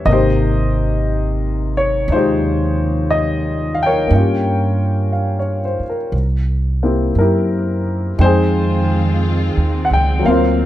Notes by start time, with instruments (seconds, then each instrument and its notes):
0.05 upright bass G#1, upright piano C3 A#3 D#5
0.11 upright piano D#4 G4 C5
1.77 upright piano C#5
2.08 upright bass D#2, upright piano D#4
2.12 upright piano G#3 F4 G4 C5
2.17 upright piano D#4
3.11 upright piano D#5
3.75 upright piano F5
3.83 upright piano A#4 C#5 G5
4.07 upright bass G2, upright piano A#3
4.12 upright piano C#4 F4
4.19 upright piano G4
5.13 upright piano F5
5.39 upright piano C#5
5.65 upright piano C5
5.79 muted upright bass stroke
5.90 upright piano A#4
6.12 upright bass C2
6.83 upright piano A#3 C4 E4 G4
7.15 upright bass F#2, upright piano A#4
7.20 upright piano E4 G4
8.18 upright bass F2, string section D#3 G#3 C4 F4, upright piano G#3 C4 D#4 C5 G5
8.24 upright piano D#4 G#4
9.57 upright bass D#2
9.85 upright piano F#5
9.90 upright bass C#2, upright piano G5
10.19 upright piano F#3 A#3
10.24 upright bass D2, string section D3 A#3, upright piano C4 C5 F5
10.29 upright piano F4 A#4